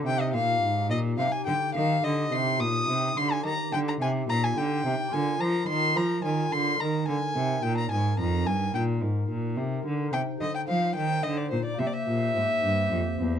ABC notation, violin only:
X:1
M:12/8
L:1/16
Q:3/8=72
K:Eb
V:1 name="Violin"
g e f4 e2 f a g2 f2 e2 c'2 e'4 c' a | b2 g b a2 b a g4 a2 b2 c'2 b2 a2 c'2 | b2 a4 g b a2 b2 a2 g2 z8 | [K:Cm] g2 e g f2 g2 e d c d =e/2 d/2 e8- e3 |]